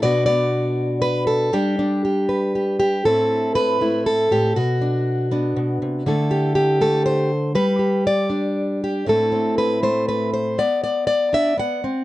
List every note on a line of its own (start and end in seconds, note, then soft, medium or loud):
0.02 1.50 B2 medium
0.02 0.27 B3 medium
0.02 1.51 D4 medium
0.02 1.51 F#4 medium
0.02 0.25 D5 loud
0.26 1.53 B3 medium
0.26 1.01 D5 loud
1.02 1.26 B4 loud
1.27 1.53 A4 loud
1.53 3.05 G3 medium
1.53 1.78 D4 medium
1.53 2.04 G4 medium
1.79 3.03 D4 medium
2.05 2.54 G4 medium
2.29 3.02 B4 soft
2.55 2.78 G4 medium
2.80 3.05 G4 medium
3.05 4.30 A2 medium
3.05 3.80 A3 soft
3.05 4.57 C4 soft
3.05 3.81 E4 soft
3.05 3.55 A4 medium
3.55 4.06 B4 loud
3.81 4.53 A3 medium
3.81 4.32 E4 soft
4.06 4.56 A4 medium
4.31 4.56 A2 medium
4.31 4.56 G4 medium
4.56 5.55 B2 medium
4.56 6.06 F#4 medium
4.82 5.32 D4 soft
5.31 6.03 B3 medium
5.31 6.07 D4 soft
5.56 5.81 B2 medium
5.82 6.06 C3 medium
6.06 7.55 D3 medium
6.06 6.80 A3 medium
6.06 7.53 E4 soft
6.06 6.80 A4 medium
6.31 6.54 G4 medium
6.55 7.30 G4 medium
6.81 7.52 A3 medium
6.81 7.05 A4 medium
7.06 7.55 C5 medium
7.55 9.06 G3 medium
7.55 8.05 B4 loud
7.79 8.81 G4 soft
8.07 9.07 D5 loud
8.30 9.03 D4 medium
8.84 9.08 G4 medium
9.06 10.58 A2 medium
9.06 9.81 A3 soft
9.06 9.31 C4 soft
9.06 10.58 E4 soft
9.06 9.58 A4 medium
9.32 10.58 C4 soft
9.58 9.83 B4 medium
9.83 10.55 A3 medium
9.83 10.08 C5 medium
10.09 10.33 B4 medium
10.34 10.59 C5 medium
10.58 11.56 B3 medium
10.58 10.82 D5 loud
10.84 11.06 D5 loud
11.07 11.83 D5 loud
11.33 11.57 D4 medium
11.33 11.59 E5 loud
11.57 11.83 B3 medium
11.57 12.04 F#5 medium
11.84 12.04 C4 medium